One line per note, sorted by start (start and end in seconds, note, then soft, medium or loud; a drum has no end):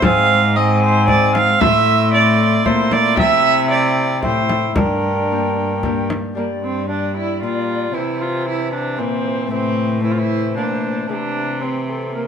0.00 1.63 G#2 medium
0.00 1.57 G#2 medium
0.00 0.55 C4 medium
0.00 0.57 F5 loud
0.00 0.52 G#5 medium
0.00 frame drum medium
0.04 0.42 C4 medium
0.56 1.07 G#3 medium
0.56 1.59 C4 medium
0.56 1.07 C4 medium
0.56 1.08 D#4 medium
0.56 0.82 D#5 medium
0.56 1.37 G#5 medium
0.82 1.08 C5 loud
1.08 1.63 G#3 medium
1.08 2.11 C4 medium
1.08 1.63 D#4 medium
1.08 1.34 D5 loud
1.08 frame drum medium
1.35 1.62 F5 loud
1.35 frame drum medium
1.60 2.64 A2 medium
1.60 3.19 A3 medium
1.60 2.64 E4 medium
1.60 2.13 E5 loud
1.60 2.63 C6 medium
1.60 frame drum medium
2.12 2.64 C4 soft
2.12 2.65 E4 medium
2.12 2.65 A4 medium
2.12 2.67 D5 loud
2.64 3.20 A#2 medium
2.64 3.19 A#2 medium
2.64 3.69 C4 medium
2.64 3.17 E4 medium
2.64 3.70 E4 medium
2.64 3.20 A4 medium
2.64 2.94 C5 loud
2.64 3.17 C6 medium
2.64 frame drum soft
2.92 3.18 D5 loud
2.92 frame drum medium
3.17 4.25 C3 medium
3.17 4.79 C3 medium
3.17 4.21 E4 medium
3.17 3.70 E5 loud
3.17 4.21 G5 medium
3.17 frame drum medium
3.70 4.22 C4 medium
3.70 4.22 E4 soft
3.70 4.23 G4 medium
3.70 4.22 D5 medium
4.22 4.79 A2 medium
4.22 4.75 A2 medium
4.22 4.79 C4 medium
4.22 4.78 E4 medium
4.22 4.79 E4 medium
4.22 5.31 G4 medium
4.22 4.76 C5 medium
4.22 4.76 G5 medium
4.22 frame drum soft
4.49 frame drum medium
4.76 6.14 G2 medium
4.76 6.36 G2 medium
4.76 6.10 D4 medium
4.76 6.08 A#4 medium
4.76 6.08 G5 medium
4.76 frame drum medium
5.31 5.83 A#3 soft
5.31 5.83 D4 soft
5.31 5.84 G4 soft
5.83 7.97 A#3 medium
5.83 6.34 D4 medium
5.83 6.35 G4 medium
5.83 frame drum medium
6.10 frame drum medium
6.35 7.43 G2 medium
6.35 7.97 G2 soft
6.35 6.86 G3 medium
6.35 6.45 A#3 medium
6.35 7.96 D4 soft
6.35 9.53 G4 soft
6.35 6.86 D5 soft
6.63 6.89 C4 medium
6.89 7.95 G3 medium
6.89 7.15 D4 medium
6.89 7.96 D5 medium
7.17 7.42 E4 medium
7.42 7.94 A#2 medium
7.42 7.97 A#2 soft
7.42 7.96 F4 medium
7.92 9.50 C3 soft
7.92 9.01 C3 medium
7.92 8.98 E3 medium
7.92 8.95 C4 soft
7.92 8.96 E4 soft
7.92 8.23 E4 medium
7.92 8.99 C5 soft
8.21 8.47 F4 medium
8.48 8.73 E4 medium
8.73 9.00 D4 medium
8.96 9.53 A#2 soft
8.96 9.51 A#2 medium
8.96 9.50 E3 medium
8.96 9.47 C4 soft
8.96 9.51 C4 medium
8.96 9.48 E4 soft
8.96 9.50 C5 medium
9.47 9.99 A3 soft
9.47 10.01 C4 soft
9.47 10.02 E4 soft
9.51 10.58 A2 medium
9.51 11.08 C3 medium
9.51 10.03 E3 medium
9.51 10.03 C4 medium
9.51 10.02 C5 medium
10.00 11.07 E3 medium
10.00 11.10 A3 soft
10.00 11.06 C4 soft
10.00 11.07 E4 soft
10.00 10.12 E4 medium
10.00 11.11 C5 medium
10.11 10.19 F4 medium
10.18 10.56 E4 medium
10.56 11.09 A#2 medium
10.56 11.12 A#2 medium
10.56 11.08 D4 medium
11.07 12.27 C3 medium
11.07 12.27 C3 soft
11.07 11.61 E3 medium
11.07 11.59 C4 soft
11.07 11.63 D4 medium
11.07 11.61 E4 soft
11.07 11.14 G#4 soft
11.13 11.62 G4 soft
11.61 12.27 E3 medium
11.61 12.27 C4 soft
11.61 12.14 C4 medium
11.61 12.27 E4 soft
11.61 11.91 G4 medium
11.89 12.17 A4 medium
12.14 12.27 A#3 medium
12.14 12.27 A#4 medium